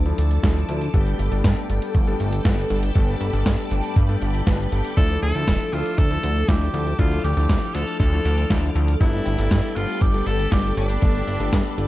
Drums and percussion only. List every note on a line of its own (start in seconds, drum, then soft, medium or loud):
0.06 closed hi-hat soft
0.18 closed hi-hat medium
0.31 closed hi-hat medium
0.43 kick loud
0.43 snare loud
0.43 closed hi-hat medium
0.69 closed hi-hat medium
0.81 closed hi-hat medium
0.94 kick loud
0.94 closed hi-hat medium
1.07 closed hi-hat soft
1.19 closed hi-hat medium
1.32 closed hi-hat soft
1.44 kick loud
1.44 snare loud
1.44 closed hi-hat medium
1.70 closed hi-hat medium
1.82 closed hi-hat soft
1.95 kick loud
1.95 closed hi-hat medium
2.07 closed hi-hat soft
2.20 closed hi-hat medium
2.33 closed hi-hat soft
2.45 kick loud
2.45 snare loud
2.45 closed hi-hat medium
2.70 closed hi-hat medium
2.83 closed hi-hat soft
2.96 kick loud
2.96 closed hi-hat medium
3.08 closed hi-hat soft
3.21 closed hi-hat medium
3.33 closed hi-hat soft
3.46 kick loud
3.46 snare loud
3.46 closed hi-hat medium
3.71 closed hi-hat medium
3.84 closed hi-hat soft
3.96 kick loud
3.96 closed hi-hat medium
4.09 closed hi-hat soft
4.22 closed hi-hat medium
4.34 closed hi-hat soft
4.47 kick loud
4.47 snare loud
4.47 closed hi-hat medium
4.72 closed hi-hat medium
4.85 closed hi-hat soft
4.97 kick loud
4.97 closed hi-hat medium
5.10 closed hi-hat soft
5.22 closed hi-hat medium
5.35 closed hi-hat soft
5.48 kick loud
5.48 snare loud
5.48 closed hi-hat medium
5.73 closed hi-hat medium
5.86 closed hi-hat soft
5.98 kick loud
5.98 closed hi-hat medium
6.11 closed hi-hat soft
6.23 closed hi-hat medium
6.36 closed hi-hat soft
6.48 kick loud
6.48 snare loud
6.48 closed hi-hat medium
6.74 closed hi-hat medium
6.86 closed hi-hat soft
6.99 kick loud
6.99 closed hi-hat medium
7.12 closed hi-hat soft
7.24 closed hi-hat medium
7.37 closed hi-hat medium
7.49 kick loud
7.49 snare loud
7.49 closed hi-hat medium
7.75 closed hi-hat medium
7.87 closed hi-hat soft
8.00 kick loud
8.00 closed hi-hat medium
8.13 closed hi-hat soft
8.25 closed hi-hat medium
8.38 closed hi-hat soft
8.50 kick loud
8.50 snare loud
8.50 closed hi-hat medium
8.76 closed hi-hat medium
8.88 closed hi-hat medium
9.01 kick loud
9.01 closed hi-hat medium
9.13 closed hi-hat soft
9.26 closed hi-hat medium
9.39 closed hi-hat medium
9.51 kick loud
9.51 snare loud
9.51 closed hi-hat medium
9.76 closed hi-hat medium
9.89 closed hi-hat medium
10.01 kick loud
10.01 closed hi-hat medium
10.14 closed hi-hat soft
10.27 closed hi-hat medium
10.39 closed hi-hat medium
10.52 kick loud
10.52 snare loud
10.52 closed hi-hat medium
10.77 closed hi-hat medium
10.90 closed hi-hat medium
11.02 kick loud
11.02 closed hi-hat medium
11.15 closed hi-hat soft
11.28 closed hi-hat medium
11.40 closed hi-hat medium
11.53 kick loud
11.53 snare loud
11.53 closed hi-hat medium
11.65 closed hi-hat soft
11.78 closed hi-hat medium